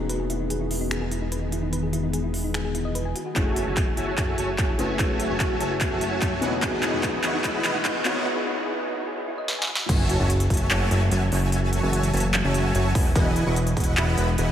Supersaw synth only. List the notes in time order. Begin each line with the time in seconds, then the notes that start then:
3.36 F#4 C#5 E5 G#5 A5
3.67 F#4 C#5 E5 G#5 A5
3.97 F#4 C#5 E5 G#5 A5
4.18 F#4 C#5 E5
4.38 F#4 C#5 E5 G#5 A5
4.58 F#4 C#5 E5 G#5 A5
4.79 F#4 C#5 E5 G#5 A5
5.30 F#4 C#5 E5 G#5 A5
5.60 F#4 C#5 E5 G#5 A5
5.91 F#4 C#5 E5 G#5 A5
6.22 F#4 E5 G#5 A5
6.42 E4 B4 D#5 F#5 G#5
6.62 E4 B4 D#5 F#5 G#5
6.93 E4 B4 D#5 F#5 C#6
7.24 E4 B4 D#5 F#5 C#6
7.44 E4 B4 D#5 F#5 B5
7.64 E4 B4 D#5 F#5 B5
7.85 E4 B4 D#5 F#5 G#5
8.05 E4 B4 D#5 F#5 C#6
9.89 F#4 C#5 E5 G#5 A5
10.20 F#4 C#5 E5 G#5 A5
10.50 F#4 C#5 E5 G#5 A5
10.71 F#4 C#5 E5 G#5 A5
10.91 F#4 C#5 E5 G#5 A5
11.12 F#4 C#5 E5 G#5 A5
11.32 F#4 C#5 E5 G#5 A5
11.83 F#4 C#5 E5 G#5 A5
12.14 F#4 C#5 E5 G#5 A5
12.44 F#4 C#5 E5 G#5 A5
12.75 F#4 C#5 E5 G#5 A5
12.95 E4 B4 D#5 F#5
13.16 E4 B4 D#5 F#5 G#5
13.46 E4 B4 D#5 F#5 C#6
13.77 E4 B4 D#5 F#5 C#6
13.97 E4 B4 D#5 F#5 B5
14.18 E4 B4 D#5 F#5 B5
14.38 E4 B4 D#5 F#5 G#5